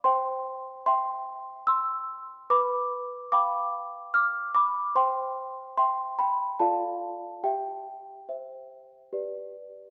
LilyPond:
\new Staff \with { instrumentName = "Celesta" } { \time 3/4 \key c \major \tempo 4 = 73 << { <g'' c'''>4 <g'' c'''>4 <c''' e'''>4 | <b'' d'''>4 <b'' d'''>4 <d''' f'''>8 <b'' d'''>8 | <g'' c'''>4 <g'' c'''>8 <g'' b''>8 <f'' a''>4 | <e'' g''>2~ <e'' g''>8 r8 | } \\ { c''4 e''2 | b'4 <f'' g''>2 | c''4 e''4 <f' a' d''>4 | g'4 <c'' e''>4 <g' b' d''>4 | } >> }